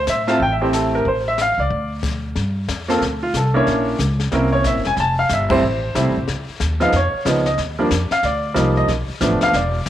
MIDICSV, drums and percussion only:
0, 0, Header, 1, 2, 480
1, 0, Start_track
1, 0, Tempo, 326264
1, 1552, Time_signature, 4, 2, 24, 8
1, 14552, End_track
2, 0, Start_track
2, 0, Title_t, "Drums"
2, 103, Note_on_c, 9, 38, 60
2, 103, Note_on_c, 9, 44, 56
2, 250, Note_off_c, 9, 38, 0
2, 250, Note_off_c, 9, 44, 0
2, 409, Note_on_c, 9, 38, 37
2, 556, Note_off_c, 9, 38, 0
2, 588, Note_on_c, 9, 36, 34
2, 593, Note_on_c, 9, 25, 44
2, 735, Note_off_c, 9, 36, 0
2, 1075, Note_on_c, 9, 38, 57
2, 1075, Note_on_c, 9, 44, 62
2, 1222, Note_off_c, 9, 38, 0
2, 1222, Note_off_c, 9, 44, 0
2, 1548, Note_on_c, 9, 36, 31
2, 1549, Note_off_c, 9, 25, 0
2, 1549, Note_on_c, 9, 25, 48
2, 1695, Note_off_c, 9, 36, 0
2, 2031, Note_on_c, 9, 38, 58
2, 2031, Note_on_c, 9, 44, 53
2, 2178, Note_off_c, 9, 38, 0
2, 2178, Note_off_c, 9, 44, 0
2, 2509, Note_off_c, 9, 25, 0
2, 2509, Note_on_c, 9, 25, 47
2, 2510, Note_on_c, 9, 36, 33
2, 2657, Note_off_c, 9, 36, 0
2, 2986, Note_on_c, 9, 38, 58
2, 2986, Note_on_c, 9, 44, 58
2, 2986, Note_on_c, 9, 49, 62
2, 2988, Note_on_c, 9, 36, 73
2, 3133, Note_off_c, 9, 38, 0
2, 3133, Note_off_c, 9, 44, 0
2, 3133, Note_off_c, 9, 49, 0
2, 3135, Note_off_c, 9, 36, 0
2, 3466, Note_off_c, 9, 25, 0
2, 3466, Note_on_c, 9, 25, 48
2, 3466, Note_on_c, 9, 38, 40
2, 3468, Note_on_c, 9, 36, 18
2, 3614, Note_off_c, 9, 38, 0
2, 3615, Note_off_c, 9, 36, 0
2, 3950, Note_on_c, 9, 36, 25
2, 3950, Note_on_c, 9, 38, 62
2, 3950, Note_on_c, 9, 44, 46
2, 4097, Note_off_c, 9, 36, 0
2, 4098, Note_off_c, 9, 38, 0
2, 4098, Note_off_c, 9, 44, 0
2, 4258, Note_on_c, 9, 38, 43
2, 4405, Note_off_c, 9, 38, 0
2, 4431, Note_on_c, 9, 36, 26
2, 4436, Note_off_c, 9, 25, 0
2, 4436, Note_on_c, 9, 25, 43
2, 4436, Note_on_c, 9, 38, 50
2, 4578, Note_off_c, 9, 36, 0
2, 4583, Note_off_c, 9, 38, 0
2, 4912, Note_on_c, 9, 36, 22
2, 4912, Note_on_c, 9, 38, 61
2, 4912, Note_on_c, 9, 44, 57
2, 5059, Note_off_c, 9, 36, 0
2, 5059, Note_off_c, 9, 38, 0
2, 5059, Note_off_c, 9, 44, 0
2, 5392, Note_on_c, 9, 36, 17
2, 5395, Note_off_c, 9, 25, 0
2, 5395, Note_on_c, 9, 25, 42
2, 5395, Note_on_c, 9, 38, 40
2, 5539, Note_off_c, 9, 36, 0
2, 5542, Note_off_c, 9, 38, 0
2, 5872, Note_on_c, 9, 36, 22
2, 5874, Note_on_c, 9, 38, 57
2, 5874, Note_on_c, 9, 44, 57
2, 6019, Note_off_c, 9, 36, 0
2, 6021, Note_off_c, 9, 38, 0
2, 6021, Note_off_c, 9, 44, 0
2, 6174, Note_on_c, 9, 38, 40
2, 6321, Note_off_c, 9, 38, 0
2, 6351, Note_off_c, 9, 25, 0
2, 6351, Note_on_c, 9, 25, 54
2, 6351, Note_on_c, 9, 36, 26
2, 6351, Note_on_c, 9, 38, 50
2, 6498, Note_off_c, 9, 38, 0
2, 6499, Note_off_c, 9, 36, 0
2, 6829, Note_on_c, 9, 38, 60
2, 6829, Note_on_c, 9, 44, 63
2, 6831, Note_on_c, 9, 36, 21
2, 6977, Note_off_c, 9, 38, 0
2, 6977, Note_off_c, 9, 44, 0
2, 6978, Note_off_c, 9, 36, 0
2, 7129, Note_on_c, 9, 38, 38
2, 7276, Note_off_c, 9, 38, 0
2, 7307, Note_off_c, 9, 25, 0
2, 7307, Note_on_c, 9, 25, 41
2, 7307, Note_on_c, 9, 38, 42
2, 7311, Note_on_c, 9, 36, 16
2, 7454, Note_off_c, 9, 38, 0
2, 7458, Note_off_c, 9, 36, 0
2, 7787, Note_on_c, 9, 38, 61
2, 7787, Note_on_c, 9, 44, 64
2, 7794, Note_on_c, 9, 36, 25
2, 7934, Note_off_c, 9, 38, 0
2, 7934, Note_off_c, 9, 44, 0
2, 7941, Note_off_c, 9, 36, 0
2, 8087, Note_on_c, 9, 49, 69
2, 8093, Note_on_c, 9, 36, 88
2, 8235, Note_off_c, 9, 49, 0
2, 8240, Note_off_c, 9, 36, 0
2, 8268, Note_off_c, 9, 25, 0
2, 8268, Note_on_c, 9, 25, 43
2, 8756, Note_on_c, 9, 36, 26
2, 8759, Note_on_c, 9, 38, 59
2, 8759, Note_on_c, 9, 44, 55
2, 8903, Note_off_c, 9, 36, 0
2, 8906, Note_off_c, 9, 38, 0
2, 8906, Note_off_c, 9, 44, 0
2, 9234, Note_off_c, 9, 25, 0
2, 9234, Note_on_c, 9, 25, 41
2, 9234, Note_on_c, 9, 38, 41
2, 9235, Note_on_c, 9, 36, 19
2, 9381, Note_off_c, 9, 38, 0
2, 9382, Note_off_c, 9, 36, 0
2, 9709, Note_on_c, 9, 38, 58
2, 9709, Note_on_c, 9, 44, 58
2, 9713, Note_on_c, 9, 36, 26
2, 9856, Note_off_c, 9, 38, 0
2, 9856, Note_off_c, 9, 44, 0
2, 9860, Note_off_c, 9, 36, 0
2, 10009, Note_on_c, 9, 38, 39
2, 10156, Note_off_c, 9, 38, 0
2, 10185, Note_off_c, 9, 25, 0
2, 10185, Note_on_c, 9, 25, 57
2, 10185, Note_on_c, 9, 38, 49
2, 10192, Note_on_c, 9, 36, 27
2, 10332, Note_off_c, 9, 38, 0
2, 10339, Note_off_c, 9, 36, 0
2, 10673, Note_on_c, 9, 36, 22
2, 10675, Note_on_c, 9, 38, 61
2, 10675, Note_on_c, 9, 44, 54
2, 10820, Note_off_c, 9, 36, 0
2, 10823, Note_off_c, 9, 38, 0
2, 10823, Note_off_c, 9, 44, 0
2, 10971, Note_on_c, 9, 38, 43
2, 11118, Note_off_c, 9, 38, 0
2, 11148, Note_off_c, 9, 25, 0
2, 11148, Note_on_c, 9, 25, 49
2, 11148, Note_on_c, 9, 38, 42
2, 11151, Note_on_c, 9, 36, 23
2, 11295, Note_off_c, 9, 38, 0
2, 11298, Note_off_c, 9, 36, 0
2, 11630, Note_on_c, 9, 36, 23
2, 11632, Note_on_c, 9, 38, 63
2, 11632, Note_on_c, 9, 44, 64
2, 11777, Note_off_c, 9, 36, 0
2, 11779, Note_off_c, 9, 38, 0
2, 11779, Note_off_c, 9, 44, 0
2, 11931, Note_on_c, 9, 38, 42
2, 12078, Note_off_c, 9, 38, 0
2, 12108, Note_on_c, 9, 36, 20
2, 12110, Note_off_c, 9, 25, 0
2, 12110, Note_on_c, 9, 25, 49
2, 12110, Note_on_c, 9, 38, 47
2, 12255, Note_off_c, 9, 36, 0
2, 12258, Note_off_c, 9, 38, 0
2, 12587, Note_on_c, 9, 36, 19
2, 12590, Note_on_c, 9, 38, 58
2, 12590, Note_on_c, 9, 44, 52
2, 12734, Note_off_c, 9, 36, 0
2, 12737, Note_off_c, 9, 38, 0
2, 12737, Note_off_c, 9, 44, 0
2, 13066, Note_on_c, 9, 36, 24
2, 13069, Note_off_c, 9, 25, 0
2, 13069, Note_on_c, 9, 25, 50
2, 13069, Note_on_c, 9, 38, 44
2, 13213, Note_off_c, 9, 36, 0
2, 13217, Note_off_c, 9, 38, 0
2, 13547, Note_on_c, 9, 36, 21
2, 13547, Note_on_c, 9, 38, 64
2, 13547, Note_on_c, 9, 44, 51
2, 13694, Note_off_c, 9, 36, 0
2, 13694, Note_off_c, 9, 38, 0
2, 13694, Note_off_c, 9, 44, 0
2, 13843, Note_on_c, 9, 38, 48
2, 13990, Note_off_c, 9, 38, 0
2, 14024, Note_off_c, 9, 25, 0
2, 14024, Note_on_c, 9, 25, 57
2, 14024, Note_on_c, 9, 38, 50
2, 14026, Note_on_c, 9, 36, 23
2, 14171, Note_off_c, 9, 38, 0
2, 14173, Note_off_c, 9, 36, 0
2, 14506, Note_on_c, 9, 36, 23
2, 14506, Note_on_c, 9, 38, 60
2, 14506, Note_on_c, 9, 44, 65
2, 14552, Note_off_c, 9, 25, 0
2, 14552, Note_off_c, 9, 36, 0
2, 14552, Note_off_c, 9, 38, 0
2, 14552, Note_off_c, 9, 44, 0
2, 14552, End_track
0, 0, End_of_file